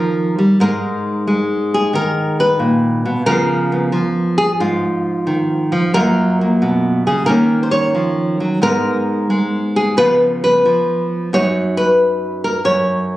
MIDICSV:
0, 0, Header, 1, 2, 480
1, 0, Start_track
1, 0, Key_signature, 6, "major"
1, 0, Tempo, 668151
1, 430, Time_signature, 4, 2, 24, 8
1, 9461, End_track
2, 0, Start_track
2, 0, Title_t, "Nylon-string guitar"
2, 0, Program_c, 0, 24
2, 0, Note_on_c, 0, 51, 64
2, 0, Note_on_c, 0, 53, 57
2, 0, Note_on_c, 0, 70, 86
2, 273, Note_off_c, 0, 53, 0
2, 276, Note_on_c, 0, 55, 61
2, 415, Note_off_c, 0, 51, 0
2, 429, Note_off_c, 0, 55, 0
2, 430, Note_off_c, 0, 70, 0
2, 432, Note_on_c, 0, 44, 78
2, 438, Note_on_c, 0, 56, 49
2, 439, Note_on_c, 0, 70, 99
2, 448, Note_on_c, 0, 63, 48
2, 912, Note_off_c, 0, 56, 0
2, 915, Note_on_c, 0, 56, 64
2, 1238, Note_off_c, 0, 70, 0
2, 1252, Note_on_c, 0, 68, 83
2, 1389, Note_on_c, 0, 51, 57
2, 1395, Note_off_c, 0, 68, 0
2, 1403, Note_on_c, 0, 70, 84
2, 1721, Note_off_c, 0, 70, 0
2, 1724, Note_on_c, 0, 71, 78
2, 1859, Note_off_c, 0, 44, 0
2, 1862, Note_on_c, 0, 46, 57
2, 2190, Note_off_c, 0, 46, 0
2, 2192, Note_off_c, 0, 51, 0
2, 2194, Note_on_c, 0, 47, 64
2, 2328, Note_off_c, 0, 56, 0
2, 2333, Note_off_c, 0, 63, 0
2, 2340, Note_off_c, 0, 47, 0
2, 2341, Note_off_c, 0, 71, 0
2, 2343, Note_on_c, 0, 49, 73
2, 2344, Note_on_c, 0, 70, 103
2, 2345, Note_on_c, 0, 53, 50
2, 2354, Note_on_c, 0, 59, 47
2, 2357, Note_on_c, 0, 65, 45
2, 2664, Note_off_c, 0, 59, 0
2, 2673, Note_on_c, 0, 59, 40
2, 2809, Note_off_c, 0, 53, 0
2, 2818, Note_on_c, 0, 53, 59
2, 2822, Note_off_c, 0, 49, 0
2, 3142, Note_off_c, 0, 70, 0
2, 3145, Note_on_c, 0, 68, 102
2, 3238, Note_off_c, 0, 68, 0
2, 3298, Note_off_c, 0, 65, 0
2, 3305, Note_on_c, 0, 44, 62
2, 3308, Note_on_c, 0, 65, 80
2, 3784, Note_on_c, 0, 51, 60
2, 4100, Note_off_c, 0, 53, 0
2, 4109, Note_on_c, 0, 53, 68
2, 4111, Note_off_c, 0, 51, 0
2, 4245, Note_off_c, 0, 59, 0
2, 4246, Note_off_c, 0, 44, 0
2, 4262, Note_off_c, 0, 53, 0
2, 4264, Note_off_c, 0, 65, 0
2, 4265, Note_on_c, 0, 42, 70
2, 4269, Note_on_c, 0, 70, 104
2, 4274, Note_on_c, 0, 54, 46
2, 4279, Note_on_c, 0, 58, 51
2, 4283, Note_on_c, 0, 65, 50
2, 4599, Note_off_c, 0, 58, 0
2, 4607, Note_on_c, 0, 58, 39
2, 4755, Note_on_c, 0, 47, 62
2, 5074, Note_off_c, 0, 47, 0
2, 5074, Note_off_c, 0, 70, 0
2, 5077, Note_on_c, 0, 49, 61
2, 5078, Note_on_c, 0, 68, 75
2, 5211, Note_off_c, 0, 54, 0
2, 5213, Note_off_c, 0, 68, 0
2, 5214, Note_off_c, 0, 58, 0
2, 5216, Note_off_c, 0, 65, 0
2, 5216, Note_on_c, 0, 70, 89
2, 5225, Note_off_c, 0, 49, 0
2, 5226, Note_off_c, 0, 42, 0
2, 5227, Note_on_c, 0, 51, 67
2, 5234, Note_on_c, 0, 58, 47
2, 5240, Note_on_c, 0, 61, 47
2, 5477, Note_off_c, 0, 70, 0
2, 5480, Note_on_c, 0, 72, 65
2, 5538, Note_off_c, 0, 72, 0
2, 5541, Note_on_c, 0, 73, 94
2, 5706, Note_off_c, 0, 58, 0
2, 5708, Note_on_c, 0, 53, 57
2, 6034, Note_off_c, 0, 53, 0
2, 6037, Note_on_c, 0, 54, 63
2, 6170, Note_off_c, 0, 51, 0
2, 6177, Note_off_c, 0, 61, 0
2, 6181, Note_off_c, 0, 73, 0
2, 6188, Note_off_c, 0, 54, 0
2, 6190, Note_on_c, 0, 44, 72
2, 6194, Note_on_c, 0, 56, 50
2, 6199, Note_on_c, 0, 70, 101
2, 6204, Note_on_c, 0, 59, 48
2, 6207, Note_on_c, 0, 63, 47
2, 6672, Note_off_c, 0, 56, 0
2, 6680, Note_on_c, 0, 56, 67
2, 7002, Note_off_c, 0, 70, 0
2, 7014, Note_on_c, 0, 68, 88
2, 7135, Note_off_c, 0, 44, 0
2, 7138, Note_off_c, 0, 56, 0
2, 7141, Note_off_c, 0, 59, 0
2, 7142, Note_off_c, 0, 63, 0
2, 7158, Note_off_c, 0, 68, 0
2, 7162, Note_on_c, 0, 49, 63
2, 7168, Note_on_c, 0, 71, 105
2, 7170, Note_on_c, 0, 53, 46
2, 7173, Note_on_c, 0, 59, 46
2, 7176, Note_on_c, 0, 65, 48
2, 7280, Note_off_c, 0, 71, 0
2, 7498, Note_on_c, 0, 71, 87
2, 7639, Note_off_c, 0, 49, 0
2, 7642, Note_off_c, 0, 53, 0
2, 7654, Note_on_c, 0, 53, 62
2, 8106, Note_off_c, 0, 53, 0
2, 8107, Note_off_c, 0, 59, 0
2, 8109, Note_off_c, 0, 65, 0
2, 8123, Note_off_c, 0, 71, 0
2, 8139, Note_on_c, 0, 42, 68
2, 8146, Note_on_c, 0, 73, 110
2, 8149, Note_on_c, 0, 63, 55
2, 8152, Note_on_c, 0, 66, 52
2, 8455, Note_off_c, 0, 73, 0
2, 8458, Note_on_c, 0, 71, 103
2, 8932, Note_off_c, 0, 71, 0
2, 8939, Note_on_c, 0, 70, 87
2, 9026, Note_off_c, 0, 70, 0
2, 9075, Note_off_c, 0, 42, 0
2, 9084, Note_on_c, 0, 42, 60
2, 9087, Note_on_c, 0, 73, 90
2, 9461, Note_off_c, 0, 42, 0
2, 9461, Note_off_c, 0, 63, 0
2, 9461, Note_off_c, 0, 66, 0
2, 9461, Note_off_c, 0, 73, 0
2, 9461, End_track
0, 0, End_of_file